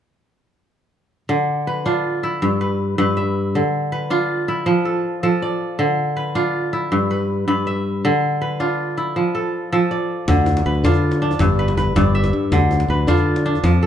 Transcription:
1.29 2.47 D3 medium
1.67 2.60 B4 medium
1.86 3.54 D4 medium
1.86 2.29 F4 medium
2.23 3.80 E4 medium
2.42 2.97 G2 medium
2.61 2.98 B4 medium
2.98 3.59 G2 medium
2.98 3.92 B4 medium
3.17 4.17 E5 medium
3.55 4.72 D3 medium
3.92 5.15 B4 medium
4.10 5.78 D4 medium
4.10 4.54 F4 medium
4.48 5.29 E4 medium
4.66 5.22 F3 medium
4.85 5.23 A4 medium
5.23 5.84 F3 medium
5.23 6.55 A4 medium
5.42 6.53 D5 medium
5.79 6.96 D3 medium
6.17 7.10 B4 medium
6.35 8.03 D4 medium
6.35 6.79 F4 medium
6.73 8.30 E4 medium
6.92 7.46 G2 medium
7.11 7.48 B4 medium
7.48 8.09 G2 medium
7.48 8.41 B4 medium
7.67 8.66 E5 medium
8.05 9.21 D3 medium
8.41 9.64 B4 medium
8.60 10.28 D4 medium
8.60 9.03 F4 medium
8.97 9.79 E4 medium
9.16 9.71 F3 medium
9.35 9.72 A4 medium
9.72 10.33 F3 medium
9.72 11.04 A4 medium
9.91 11.02 D5 medium
10.28 10.61 D2 medium
10.28 11.45 D3 medium
10.28 djembe slap medium
10.28 djembe bass medium
10.46 djembe tone medium
10.57 djembe slap medium
10.66 10.82 D2 medium
10.66 11.59 B4 medium
10.75 djembe slap soft
10.84 11.33 D3 medium
10.84 11.21 D4 medium
10.84 12.21 F4 medium
10.84 djembe slap medium
10.84 djembe bass medium
10.94 djembe slap soft
10.94 djembe tone medium
11.11 djembe slap medium
11.22 12.90 D4 medium
11.31 djembe tone medium
11.39 11.73 G1 medium
11.39 11.95 G2 medium
11.39 djembe slap medium
11.39 djembe bass medium
11.49 djembe slap soft
11.59 11.77 B4 medium
11.68 djembe slap medium
11.77 11.94 G1 medium
11.77 12.89 B4 medium
11.77 djembe tone medium
11.87 djembe slap soft
11.96 12.29 G1 medium
11.96 12.57 G2 medium
11.96 13.07 D5 medium
11.96 djembe slap medium
11.96 djembe bass medium
12.15 13.14 E5 medium
12.24 djembe slap soft
12.24 djembe tone medium
12.33 12.50 G2 medium
12.33 djembe slap soft
12.43 djembe slap soft
12.52 12.85 D2 medium
12.52 13.69 D3 medium
12.52 djembe slap medium
12.52 djembe bass medium
12.71 djembe tone medium
12.80 djembe slap medium
12.88 13.05 D2 medium
12.88 13.86 B4 medium
12.99 djembe slap soft
13.07 13.57 D3 medium
13.07 13.45 D4 medium
13.07 13.86 F4 medium
13.07 djembe slap medium
13.07 djembe bass medium
13.17 djembe slap soft
13.17 djembe tone medium
13.36 djembe slap medium
13.46 13.86 D4 medium
13.55 djembe tone soft
13.63 13.86 F2 medium
13.63 13.86 F3 medium
13.63 djembe slap medium
13.63 djembe bass medium
13.73 djembe slap soft
13.83 13.86 A4 medium

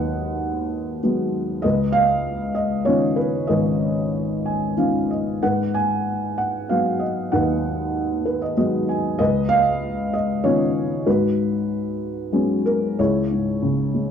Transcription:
0.00 1.60 D#2 medium
0.00 0.98 F#3 soft
0.00 0.99 G#3 soft
0.00 0.99 B3 soft
0.00 0.99 B4 medium
0.00 1.62 D#5 medium
0.00 0.99 F#5 medium
1.03 1.62 F#3 soft
1.03 1.62 G#3 soft
1.03 1.62 B3 soft
1.62 3.45 C#2 medium
1.62 2.52 B4 medium
1.62 1.95 D#5 medium
1.92 2.51 F5 loud
2.55 2.87 D#5 medium
2.85 4.73 D#3 soft
2.85 4.73 F3 soft
2.85 4.73 B3 soft
2.85 4.73 C#4 soft
2.85 3.18 C#5 medium
3.16 3.48 B4 medium
3.47 5.38 G#1 medium
3.47 4.73 B4 medium
3.47 4.72 D#5 medium
4.46 4.75 G#5 medium
4.77 5.40 D#3 soft
4.77 5.40 F3 soft
4.77 5.40 B3 soft
4.77 5.41 C#4 soft
4.77 5.08 F5 medium
5.10 5.40 D#5 soft
5.43 7.29 G#2 medium
5.43 6.35 B4 medium
5.43 5.76 F#5 medium
5.74 6.35 G#5 medium
6.38 6.67 F#5 medium
6.69 8.53 F#3 soft
6.69 8.54 G#3 soft
6.69 8.54 B3 soft
6.69 7.02 F5 medium
6.99 7.33 D#5 medium
7.32 9.16 D#2 medium
7.32 8.24 B4 soft
7.32 8.53 F#5 medium
8.25 8.40 B4 medium
8.42 8.56 D#5 medium
8.57 9.18 F#3 soft
8.57 9.18 G#3 soft
8.57 9.18 B3 soft
8.57 8.87 D#5 medium
8.89 9.18 G#5 medium
9.19 11.02 C#2 medium
9.19 10.10 B4 medium
9.19 9.51 D#5 medium
9.49 10.14 F5 loud
10.13 10.42 D#5 medium
10.44 11.04 D#3 soft
10.44 11.04 F3 soft
10.44 11.05 B3 soft
10.44 11.05 C#4 medium
10.44 11.08 C#5 medium
11.06 12.95 G#2 medium
11.06 12.62 F#4 medium
11.06 12.63 B4 medium
12.32 12.97 F#3 soft
12.32 12.97 G#3 soft
12.32 12.97 B3 soft
12.32 12.97 C#4 soft
12.66 13.00 A#4 medium
12.99 14.11 C#2 soft
12.99 14.11 E4 medium
12.99 14.11 G#4 medium
12.99 14.11 C#5 medium
13.31 14.11 G#2 soft
13.62 14.11 C#3 soft
13.94 14.11 G#3 soft

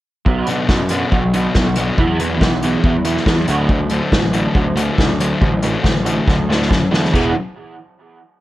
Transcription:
0.26 0.43 B1 medium
0.26 0.46 B2 medium
0.26 0.46 F#3 medium
0.26 0.47 B3 loud
0.26 kick loud
0.47 0.67 B2 medium
0.47 0.67 F#3 medium
0.47 0.77 B3 medium
0.47 0.77 D4 medium
0.47 closed hi-hat medium
0.69 1.03 F#2 medium
0.69 0.89 B2 medium
0.69 0.89 F#3 medium
0.69 kick loud
0.69 snare loud
0.89 1.10 B2 medium
0.89 1.11 F#3 medium
0.89 1.20 B3 medium
0.89 1.19 D4 medium
0.89 closed hi-hat medium
1.12 1.46 B1 medium
1.12 1.32 B2 medium
1.12 1.32 F#3 medium
1.12 kick loud
1.33 1.53 B2 medium
1.33 1.54 F#3 medium
1.33 1.62 B3 medium
1.33 1.62 D4 medium
1.33 closed hi-hat medium
1.55 1.89 B1 medium
1.55 1.75 B2 medium
1.55 1.75 F#3 medium
1.55 kick loud
1.55 snare loud
1.76 1.96 B2 medium
1.76 1.96 F#3 medium
1.76 1.99 B3 medium
1.76 1.99 D4 medium
1.76 closed hi-hat medium
1.98 2.41 E2 medium
1.98 2.19 E3 medium
1.98 2.19 B3 medium
1.98 2.19 E4 loud
1.98 kick loud
2.19 2.40 E3 medium
2.19 2.48 F#3 medium
2.19 2.40 B3 medium
2.19 2.48 E4 medium
2.19 closed hi-hat medium
2.41 2.75 B1 medium
2.41 2.61 E3 medium
2.41 2.61 B3 medium
2.41 kick loud
2.41 snare loud
2.62 2.83 E3 medium
2.62 2.92 F#3 medium
2.62 2.83 B3 medium
2.62 2.91 E4 medium
2.62 closed hi-hat medium
2.84 3.18 E2 medium
2.84 3.04 E3 medium
2.84 3.04 B3 medium
2.84 kick loud
3.05 3.25 E3 medium
3.05 3.34 F#3 medium
3.05 3.25 B3 medium
3.05 3.33 E4 medium
3.05 closed hi-hat medium
3.17 snare soft
3.26 3.44 E2 medium
3.26 3.46 E3 medium
3.26 3.47 B3 medium
3.26 kick loud
3.26 snare loud
3.48 3.99 D2 medium
3.48 3.68 D3 medium
3.48 3.69 F#3 loud
3.48 3.69 A3 loud
3.48 3.76 D4 medium
3.48 closed hi-hat medium
3.69 3.89 D3 medium
3.69 3.90 F#3 medium
3.69 kick loud
3.90 4.11 D3 medium
3.90 4.11 F#3 medium
3.90 4.20 A3 medium
3.90 4.19 D4 medium
3.90 closed hi-hat medium
4.12 4.46 A1 medium
4.12 4.32 D3 medium
4.12 4.32 F#3 medium
4.12 kick loud
4.12 snare loud
4.33 4.54 D3 medium
4.33 4.54 F#3 medium
4.33 4.62 A3 medium
4.33 4.62 D4 medium
4.33 closed hi-hat medium
4.55 4.89 D2 medium
4.55 4.75 D3 medium
4.55 4.75 F#3 medium
4.55 kick loud
4.76 4.96 D3 medium
4.76 4.97 F#3 medium
4.76 5.05 A3 medium
4.76 5.05 D4 medium
4.76 closed hi-hat medium
4.98 5.32 D2 medium
4.98 5.18 D3 medium
4.98 5.18 F#3 medium
4.98 kick loud
4.98 snare loud
5.20 5.40 D3 medium
5.20 5.40 F#3 medium
5.20 5.48 A3 medium
5.20 5.48 D4 medium
5.20 closed hi-hat medium
5.41 5.75 A1 loud
5.41 5.61 D3 medium
5.41 5.61 F#3 medium
5.41 kick loud
5.62 5.82 D3 medium
5.62 5.82 F#3 medium
5.62 5.92 A3 medium
5.62 5.91 D4 medium
5.62 closed hi-hat medium
5.83 6.18 A1 medium
5.83 6.03 D3 medium
5.83 6.04 F#3 medium
5.83 kick loud
5.83 snare loud
6.05 6.25 D3 medium
6.05 6.25 F#3 medium
6.05 6.34 A3 medium
6.05 6.34 D4 medium
6.05 closed hi-hat medium
6.28 6.70 D2 medium
6.28 6.47 D3 medium
6.28 6.47 F#3 medium
6.28 kick loud
6.28 snare medium
6.49 6.68 D3 medium
6.49 6.68 F#3 medium
6.49 6.77 A3 medium
6.49 6.77 D4 medium
6.49 snare medium
6.62 snare medium
6.69 6.90 F#2 medium
6.69 6.89 D3 medium
6.69 6.89 F#3 medium
6.69 kick loud
6.69 snare medium
6.91 7.11 E2 medium
6.91 7.11 D3 medium
6.91 7.11 F#3 medium
6.91 7.13 A3 medium
6.91 7.13 D4 medium
6.91 snare medium
7.05 snare medium
7.12 7.33 E1 medium
7.12 7.30 E3 medium
7.12 7.31 G#3 medium
7.12 7.30 B3 loud
7.12 7.31 E4 medium
7.12 7.31 G#4 loud
7.12 kick loud
7.12 crash medium

